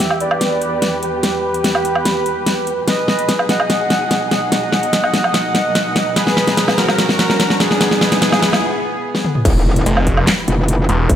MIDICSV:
0, 0, Header, 1, 8, 480
1, 0, Start_track
1, 0, Tempo, 410959
1, 1439, Time_signature, 4, 2, 24, 8
1, 13030, End_track
2, 0, Start_track
2, 0, Title_t, "Supersaw synth"
2, 0, Program_c, 0, 81
2, 0, Note_on_c, 0, 67, 76
2, 0, Note_on_c, 0, 76, 98
2, 146, Note_off_c, 0, 67, 0
2, 146, Note_off_c, 0, 76, 0
2, 239, Note_on_c, 0, 71, 82
2, 239, Note_on_c, 0, 74, 102
2, 1106, Note_off_c, 0, 71, 0
2, 1106, Note_off_c, 0, 74, 0
2, 1198, Note_on_c, 0, 71, 105
2, 1199, Note_on_c, 0, 67, 90
2, 3266, Note_off_c, 0, 67, 0
2, 3266, Note_off_c, 0, 71, 0
2, 3358, Note_on_c, 0, 71, 79
2, 3358, Note_on_c, 0, 75, 100
2, 3986, Note_off_c, 0, 71, 0
2, 3986, Note_off_c, 0, 75, 0
2, 4079, Note_on_c, 0, 75, 80
2, 4079, Note_on_c, 0, 78, 101
2, 4946, Note_off_c, 0, 75, 0
2, 4946, Note_off_c, 0, 78, 0
2, 5039, Note_on_c, 0, 75, 92
2, 5039, Note_on_c, 0, 78, 106
2, 7106, Note_off_c, 0, 75, 0
2, 7106, Note_off_c, 0, 78, 0
2, 7198, Note_on_c, 0, 68, 79
2, 7198, Note_on_c, 0, 71, 102
2, 7826, Note_off_c, 0, 68, 0
2, 7826, Note_off_c, 0, 71, 0
2, 7919, Note_on_c, 0, 66, 80
2, 7919, Note_on_c, 0, 70, 102
2, 8786, Note_off_c, 0, 66, 0
2, 8786, Note_off_c, 0, 70, 0
2, 8879, Note_on_c, 0, 59, 91
2, 8879, Note_on_c, 0, 68, 110
2, 10946, Note_off_c, 0, 59, 0
2, 10946, Note_off_c, 0, 68, 0
2, 13030, End_track
3, 0, Start_track
3, 0, Title_t, "String section"
3, 0, Program_c, 1, 48
3, 0, Note_on_c, 1, 40, 73
3, 0, Note_on_c, 1, 52, 68
3, 0, Note_on_c, 1, 59, 68
3, 0, Note_on_c, 1, 67, 85
3, 3312, Note_off_c, 1, 40, 0
3, 3312, Note_off_c, 1, 52, 0
3, 3312, Note_off_c, 1, 59, 0
3, 3312, Note_off_c, 1, 67, 0
3, 3358, Note_on_c, 1, 47, 77
3, 3358, Note_on_c, 1, 54, 72
3, 3358, Note_on_c, 1, 63, 71
3, 3358, Note_on_c, 1, 68, 86
3, 7160, Note_off_c, 1, 68, 0
3, 7199, Note_on_c, 1, 82, 89
3, 10032, Note_off_c, 1, 47, 0
3, 10032, Note_off_c, 1, 54, 0
3, 10032, Note_off_c, 1, 63, 0
3, 10050, Note_off_c, 1, 82, 0
3, 11038, Note_on_c, 1, 52, 82
3, 11038, Note_on_c, 1, 64, 73
3, 11038, Note_on_c, 1, 67, 72
3, 11038, Note_on_c, 1, 71, 87
3, 13030, Note_off_c, 1, 52, 0
3, 13030, Note_off_c, 1, 64, 0
3, 13030, Note_off_c, 1, 67, 0
3, 13030, Note_off_c, 1, 71, 0
3, 13030, End_track
4, 0, Start_track
4, 0, Title_t, "Wobble bass"
4, 0, Program_c, 2, 39
4, 11039, Note_on_c, 2, 28, 97
4, 11500, Note_off_c, 2, 28, 0
4, 12239, Note_on_c, 2, 29, 97
4, 12700, Note_off_c, 2, 29, 0
4, 12959, Note_on_c, 2, 29, 97
4, 13030, Note_off_c, 2, 29, 0
4, 13030, End_track
5, 0, Start_track
5, 0, Title_t, "Detuned saw bass"
5, 0, Program_c, 3, 39
5, 11519, Note_on_c, 3, 29, 96
5, 11980, Note_off_c, 3, 29, 0
5, 12719, Note_on_c, 3, 28, 96
5, 12940, Note_off_c, 3, 28, 0
5, 13030, End_track
6, 0, Start_track
6, 0, Title_t, "Impact"
6, 0, Program_c, 4, 103
6, 11039, Note_on_c, 4, 60, 78
6, 12959, Note_off_c, 4, 60, 0
6, 13030, End_track
7, 0, Start_track
7, 0, Title_t, "Riser"
7, 0, Program_c, 5, 103
7, 3358, Note_on_c, 5, 60, 81
7, 10079, Note_off_c, 5, 60, 0
7, 13030, End_track
8, 0, Start_track
8, 0, Title_t, "Drums"
8, 123, Note_on_c, 9, 77, 71
8, 239, Note_on_c, 9, 42, 49
8, 240, Note_off_c, 9, 77, 0
8, 355, Note_off_c, 9, 42, 0
8, 363, Note_on_c, 9, 77, 76
8, 479, Note_on_c, 9, 38, 61
8, 479, Note_on_c, 9, 42, 76
8, 480, Note_off_c, 9, 77, 0
8, 595, Note_off_c, 9, 38, 0
8, 595, Note_off_c, 9, 42, 0
8, 719, Note_on_c, 9, 42, 50
8, 836, Note_off_c, 9, 42, 0
8, 958, Note_on_c, 9, 38, 63
8, 958, Note_on_c, 9, 42, 75
8, 1075, Note_off_c, 9, 38, 0
8, 1075, Note_off_c, 9, 42, 0
8, 1199, Note_on_c, 9, 42, 51
8, 1315, Note_off_c, 9, 42, 0
8, 1439, Note_on_c, 9, 38, 66
8, 1439, Note_on_c, 9, 42, 73
8, 1556, Note_off_c, 9, 38, 0
8, 1556, Note_off_c, 9, 42, 0
8, 1803, Note_on_c, 9, 42, 48
8, 1919, Note_off_c, 9, 42, 0
8, 1919, Note_on_c, 9, 38, 71
8, 1919, Note_on_c, 9, 42, 74
8, 2036, Note_off_c, 9, 38, 0
8, 2036, Note_off_c, 9, 42, 0
8, 2043, Note_on_c, 9, 77, 76
8, 2159, Note_on_c, 9, 42, 48
8, 2160, Note_off_c, 9, 77, 0
8, 2276, Note_off_c, 9, 42, 0
8, 2283, Note_on_c, 9, 77, 75
8, 2399, Note_on_c, 9, 38, 70
8, 2399, Note_on_c, 9, 42, 76
8, 2400, Note_off_c, 9, 77, 0
8, 2516, Note_off_c, 9, 38, 0
8, 2516, Note_off_c, 9, 42, 0
8, 2639, Note_on_c, 9, 42, 48
8, 2756, Note_off_c, 9, 42, 0
8, 2879, Note_on_c, 9, 38, 69
8, 2879, Note_on_c, 9, 42, 73
8, 2996, Note_off_c, 9, 38, 0
8, 2996, Note_off_c, 9, 42, 0
8, 3119, Note_on_c, 9, 42, 51
8, 3236, Note_off_c, 9, 42, 0
8, 3359, Note_on_c, 9, 38, 72
8, 3359, Note_on_c, 9, 42, 74
8, 3475, Note_off_c, 9, 38, 0
8, 3475, Note_off_c, 9, 42, 0
8, 3599, Note_on_c, 9, 38, 73
8, 3716, Note_off_c, 9, 38, 0
8, 3723, Note_on_c, 9, 42, 52
8, 3838, Note_off_c, 9, 42, 0
8, 3838, Note_on_c, 9, 38, 79
8, 3838, Note_on_c, 9, 42, 76
8, 3955, Note_off_c, 9, 38, 0
8, 3955, Note_off_c, 9, 42, 0
8, 3962, Note_on_c, 9, 77, 79
8, 4078, Note_on_c, 9, 38, 74
8, 4078, Note_on_c, 9, 42, 51
8, 4079, Note_off_c, 9, 77, 0
8, 4195, Note_off_c, 9, 38, 0
8, 4195, Note_off_c, 9, 42, 0
8, 4202, Note_on_c, 9, 77, 81
8, 4319, Note_off_c, 9, 77, 0
8, 4319, Note_on_c, 9, 38, 82
8, 4319, Note_on_c, 9, 42, 78
8, 4435, Note_off_c, 9, 38, 0
8, 4435, Note_off_c, 9, 42, 0
8, 4559, Note_on_c, 9, 38, 81
8, 4559, Note_on_c, 9, 42, 51
8, 4676, Note_off_c, 9, 38, 0
8, 4676, Note_off_c, 9, 42, 0
8, 4799, Note_on_c, 9, 38, 78
8, 4799, Note_on_c, 9, 42, 73
8, 4915, Note_off_c, 9, 38, 0
8, 4915, Note_off_c, 9, 42, 0
8, 5039, Note_on_c, 9, 38, 77
8, 5039, Note_on_c, 9, 42, 49
8, 5155, Note_off_c, 9, 38, 0
8, 5155, Note_off_c, 9, 42, 0
8, 5279, Note_on_c, 9, 38, 83
8, 5279, Note_on_c, 9, 42, 76
8, 5395, Note_off_c, 9, 38, 0
8, 5395, Note_off_c, 9, 42, 0
8, 5518, Note_on_c, 9, 38, 86
8, 5635, Note_off_c, 9, 38, 0
8, 5642, Note_on_c, 9, 42, 52
8, 5758, Note_off_c, 9, 42, 0
8, 5758, Note_on_c, 9, 38, 87
8, 5758, Note_on_c, 9, 42, 79
8, 5875, Note_off_c, 9, 38, 0
8, 5875, Note_off_c, 9, 42, 0
8, 5883, Note_on_c, 9, 77, 81
8, 5999, Note_off_c, 9, 77, 0
8, 5999, Note_on_c, 9, 38, 84
8, 5999, Note_on_c, 9, 42, 50
8, 6115, Note_off_c, 9, 38, 0
8, 6115, Note_off_c, 9, 42, 0
8, 6123, Note_on_c, 9, 77, 81
8, 6238, Note_on_c, 9, 38, 88
8, 6238, Note_on_c, 9, 42, 77
8, 6239, Note_off_c, 9, 77, 0
8, 6355, Note_off_c, 9, 38, 0
8, 6355, Note_off_c, 9, 42, 0
8, 6478, Note_on_c, 9, 38, 88
8, 6478, Note_on_c, 9, 42, 52
8, 6595, Note_off_c, 9, 38, 0
8, 6595, Note_off_c, 9, 42, 0
8, 6718, Note_on_c, 9, 38, 88
8, 6718, Note_on_c, 9, 42, 81
8, 6835, Note_off_c, 9, 38, 0
8, 6835, Note_off_c, 9, 42, 0
8, 6958, Note_on_c, 9, 38, 91
8, 6958, Note_on_c, 9, 42, 52
8, 7075, Note_off_c, 9, 38, 0
8, 7075, Note_off_c, 9, 42, 0
8, 7198, Note_on_c, 9, 38, 90
8, 7198, Note_on_c, 9, 42, 81
8, 7315, Note_off_c, 9, 38, 0
8, 7315, Note_off_c, 9, 42, 0
8, 7323, Note_on_c, 9, 38, 80
8, 7438, Note_off_c, 9, 38, 0
8, 7438, Note_on_c, 9, 38, 91
8, 7555, Note_off_c, 9, 38, 0
8, 7562, Note_on_c, 9, 38, 83
8, 7562, Note_on_c, 9, 42, 55
8, 7678, Note_off_c, 9, 38, 0
8, 7678, Note_off_c, 9, 42, 0
8, 7678, Note_on_c, 9, 38, 98
8, 7678, Note_on_c, 9, 42, 84
8, 7795, Note_off_c, 9, 38, 0
8, 7795, Note_off_c, 9, 42, 0
8, 7803, Note_on_c, 9, 38, 84
8, 7803, Note_on_c, 9, 77, 83
8, 7918, Note_off_c, 9, 38, 0
8, 7918, Note_on_c, 9, 38, 92
8, 7918, Note_on_c, 9, 42, 52
8, 7919, Note_off_c, 9, 77, 0
8, 8035, Note_off_c, 9, 38, 0
8, 8035, Note_off_c, 9, 42, 0
8, 8042, Note_on_c, 9, 38, 87
8, 8042, Note_on_c, 9, 77, 85
8, 8158, Note_off_c, 9, 38, 0
8, 8158, Note_on_c, 9, 38, 96
8, 8158, Note_on_c, 9, 42, 85
8, 8159, Note_off_c, 9, 77, 0
8, 8275, Note_off_c, 9, 38, 0
8, 8275, Note_off_c, 9, 42, 0
8, 8282, Note_on_c, 9, 38, 83
8, 8399, Note_off_c, 9, 38, 0
8, 8399, Note_on_c, 9, 38, 101
8, 8399, Note_on_c, 9, 42, 55
8, 8515, Note_off_c, 9, 38, 0
8, 8515, Note_off_c, 9, 42, 0
8, 8523, Note_on_c, 9, 38, 88
8, 8639, Note_off_c, 9, 38, 0
8, 8639, Note_on_c, 9, 38, 99
8, 8639, Note_on_c, 9, 42, 80
8, 8756, Note_off_c, 9, 38, 0
8, 8756, Note_off_c, 9, 42, 0
8, 8763, Note_on_c, 9, 38, 86
8, 8879, Note_off_c, 9, 38, 0
8, 8879, Note_on_c, 9, 38, 100
8, 8879, Note_on_c, 9, 42, 55
8, 8996, Note_off_c, 9, 38, 0
8, 8996, Note_off_c, 9, 42, 0
8, 9003, Note_on_c, 9, 38, 87
8, 9119, Note_off_c, 9, 38, 0
8, 9119, Note_on_c, 9, 38, 102
8, 9119, Note_on_c, 9, 42, 80
8, 9235, Note_off_c, 9, 38, 0
8, 9235, Note_off_c, 9, 42, 0
8, 9243, Note_on_c, 9, 38, 87
8, 9359, Note_off_c, 9, 38, 0
8, 9359, Note_on_c, 9, 38, 102
8, 9476, Note_off_c, 9, 38, 0
8, 9483, Note_on_c, 9, 38, 91
8, 9483, Note_on_c, 9, 42, 55
8, 9599, Note_off_c, 9, 38, 0
8, 9599, Note_off_c, 9, 42, 0
8, 9599, Note_on_c, 9, 38, 108
8, 9599, Note_on_c, 9, 42, 87
8, 9716, Note_off_c, 9, 38, 0
8, 9716, Note_off_c, 9, 42, 0
8, 9723, Note_on_c, 9, 38, 94
8, 9723, Note_on_c, 9, 77, 84
8, 9839, Note_off_c, 9, 38, 0
8, 9839, Note_on_c, 9, 38, 103
8, 9839, Note_on_c, 9, 42, 53
8, 9840, Note_off_c, 9, 77, 0
8, 9956, Note_off_c, 9, 38, 0
8, 9956, Note_off_c, 9, 42, 0
8, 9964, Note_on_c, 9, 38, 95
8, 9964, Note_on_c, 9, 77, 88
8, 10081, Note_off_c, 9, 38, 0
8, 10081, Note_off_c, 9, 77, 0
8, 10683, Note_on_c, 9, 38, 54
8, 10799, Note_on_c, 9, 47, 79
8, 10800, Note_off_c, 9, 38, 0
8, 10916, Note_off_c, 9, 47, 0
8, 10923, Note_on_c, 9, 45, 80
8, 11039, Note_on_c, 9, 36, 127
8, 11039, Note_on_c, 9, 42, 81
8, 11039, Note_on_c, 9, 49, 104
8, 11040, Note_off_c, 9, 45, 0
8, 11156, Note_off_c, 9, 36, 0
8, 11156, Note_off_c, 9, 42, 0
8, 11156, Note_off_c, 9, 49, 0
8, 11403, Note_on_c, 9, 42, 55
8, 11519, Note_off_c, 9, 42, 0
8, 11519, Note_on_c, 9, 42, 86
8, 11635, Note_off_c, 9, 42, 0
8, 11643, Note_on_c, 9, 77, 83
8, 11758, Note_on_c, 9, 42, 54
8, 11759, Note_on_c, 9, 36, 65
8, 11760, Note_off_c, 9, 77, 0
8, 11875, Note_off_c, 9, 42, 0
8, 11876, Note_off_c, 9, 36, 0
8, 11883, Note_on_c, 9, 77, 80
8, 11998, Note_on_c, 9, 38, 121
8, 11998, Note_on_c, 9, 39, 94
8, 11998, Note_on_c, 9, 42, 86
8, 11999, Note_off_c, 9, 77, 0
8, 12115, Note_off_c, 9, 38, 0
8, 12115, Note_off_c, 9, 39, 0
8, 12115, Note_off_c, 9, 42, 0
8, 12239, Note_on_c, 9, 42, 57
8, 12355, Note_off_c, 9, 42, 0
8, 12479, Note_on_c, 9, 42, 82
8, 12595, Note_off_c, 9, 42, 0
8, 12718, Note_on_c, 9, 42, 54
8, 12835, Note_off_c, 9, 42, 0
8, 12958, Note_on_c, 9, 42, 81
8, 12959, Note_on_c, 9, 36, 127
8, 13030, Note_off_c, 9, 36, 0
8, 13030, Note_off_c, 9, 42, 0
8, 13030, End_track
0, 0, End_of_file